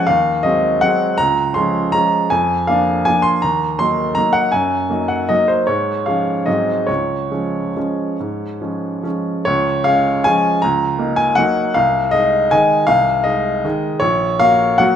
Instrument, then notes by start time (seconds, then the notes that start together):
grand piano
0.07 D#2 F5
0.43 F#3 G#3 C4 D#5
0.81 F#3 G#3 C4 F#5
1.18 C#2 A#5
1.54 F3 G#3 C#4 C6
1.92 F3 G#3 C#4 A#5
2.30 F2 G#5
2.67 F3 A#3 D4 F5
3.05 F3 A#3 D4 G#5
3.22 C6
3.42 D#2 A#5
3.79 F#3 A#3 D#4 C6
4.15 F#3 A#3 D#4 A#5
4.33 F#5
4.52 F#2 G#5
4.90 F#3 A#3 D#4
5.08 F#5
5.29 F#3 A#3 D#4 D#5
5.48 C5
5.67 G#2 C#5
6.06 F3 G#3 C#4 F5
6.46 G#2 F#3 G#3 C4 D#5
6.87 C#2 C#5
7.31 F3 G#3 C#4
7.76 F3 G#3 C#4
8.20 G#2
8.61 F3 G#3 C#4
9.03 F3 G#3 C#4
9.45 C#2 C#5
9.84 G#3 C#4 F5
10.24 F3 G#3 C#4 G#5
10.62 C#2 A#5
10.99 A#3 D#4
11.16 G#5
11.35 F#3 A#3 D#4 F#5
11.74 C2 F5
12.11 G#3 D#4 D#5
12.51 D#3 G#3 D#4 G#5
12.87 C2 F5
13.24 G#3 D#4 D#5
13.64 D#3 G#3 D#4
14.00 A#1 C#5
14.40 A#3 F#4 F5
14.78 F#3 A#3 F#4 F#5